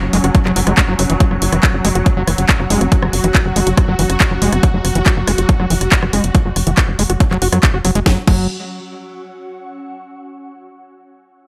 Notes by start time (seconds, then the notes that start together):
Already playing: F#3 C#4 F#4 F#5 C#6
0.03 F#1
0.13 F#1 G#3, open hi-hat
0.24 F#1 F#4, cross-stick, closed hi-hat
0.35 F#3, kick, closed hi-hat
0.45 F#1 F#3, cross-stick, clap
0.56 F#1 F#3, open hi-hat
0.67 F#1 G#3, cross-stick, closed hi-hat
0.77 G#3, kick, clap, closed hi-hat
0.88 F#1 F#3
0.99 F#1 F#3, cross-stick, open hi-hat
1.10 F#1 E3, closed hi-hat
1.20 F#3 F#4, kick, closed hi-hat
1.31 F#1 F#3, cross-stick
1.42 F#1, open hi-hat
1.52 F#1 E3, cross-stick, closed hi-hat
1.63 kick, clap, closed hi-hat
1.74 F#1
1.81 F#1 G#3 E6, cross-stick, open hi-hat
1.95 F#1 F#4, closed hi-hat
2.06 F#3, kick, cross-stick, closed hi-hat
2.17 F#1 F#3
2.27 F#1 E3, cross-stick, open hi-hat
2.38 F#1, closed hi-hat
2.49 kick, clap, closed hi-hat
2.60 F#1 F#3, cross-stick
2.70 F#1 G#3, open hi-hat
2.81 F#1 C#4, cross-stick, closed hi-hat
2.92 F#3, kick, closed hi-hat
3.02 F#1 F#3, cross-stick
3.13 F#1, open hi-hat
3.24 F#1 E3, closed hi-hat
3.35 kick, cross-stick, clap, closed hi-hat
3.45 F#1
3.56 F#1 G#3, open hi-hat
3.67 F#1 F#4, closed hi-hat
3.77 F#3, kick, cross-stick, closed hi-hat
3.88 F#1 F#3
3.99 F#1 E3, open hi-hat
4.10 F#1, cross-stick, closed hi-hat
4.20 kick, clap, closed hi-hat
4.31 F#1 F#3, cross-stick
4.42 F#1 G#3, open hi-hat
4.52 F#1 C#4, cross-stick, closed hi-hat
4.63 F#3, kick, closed hi-hat
4.74 F#1 F#3
4.85 F#1, cross-stick, open hi-hat
4.95 F#1 E3, closed hi-hat
5.06 kick, cross-stick, clap, closed hi-hat
5.17 F#1
5.28 F#1 G#3, cross-stick, open hi-hat
5.38 F#1 F#4, closed hi-hat
5.49 F#3, kick, closed hi-hat
5.60 F#1 F#3, cross-stick
5.70 F#1 E3, open hi-hat
5.81 F#1, cross-stick, closed hi-hat
5.92 kick, clap, closed hi-hat
6.02 F#1 F#3, cross-stick
6.13 F#1 G#3, open hi-hat
6.24 F#1 C#4, closed hi-hat
6.35 F#3, kick, cross-stick, closed hi-hat
6.45 F#1 F#3
6.56 F#1, cross-stick, open hi-hat
6.67 F#1 E3, closed hi-hat
6.77 kick, cross-stick, clap, closed hi-hat
6.88 F#1
6.99 F#1 G#3, open hi-hat
7.10 F#1 F#4, cross-stick, closed hi-hat
7.20 F#3, kick, closed hi-hat
7.31 F#1 F#3, cross-stick, clap
7.42 F#1 F#4, open hi-hat
7.52 F#2 F#3, cross-stick, closed hi-hat
7.63 kick, clap, closed hi-hat
7.74 F#1 F#4
7.85 F#1 F#3, cross-stick, open hi-hat
7.95 F#1 G#3, closed hi-hat
8.06 F#1 F#3 C#4, kick, snare
8.13 F#4
8.19 F#5
8.25 F#1 F#3 C#6, kick, crash